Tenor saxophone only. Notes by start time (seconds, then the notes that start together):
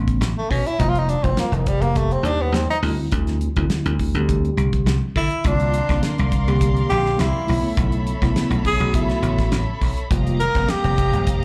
0.38 A3
0.50 C#4
0.67 E4
0.80 D#4
0.89 F4
0.99 D#4
1.09 D4
1.24 C4
1.39 A#3
1.55 D#3
1.68 G3
1.82 A#3
1.97 A3
2.12 C4
2.26 D4
2.42 B3
2.55 C4
2.70 D#4
5.17 E4
5.47 D4
6.89 G4
7.20 E4
8.66 G#4
8.95 E4
10.40 A#4
10.70 G4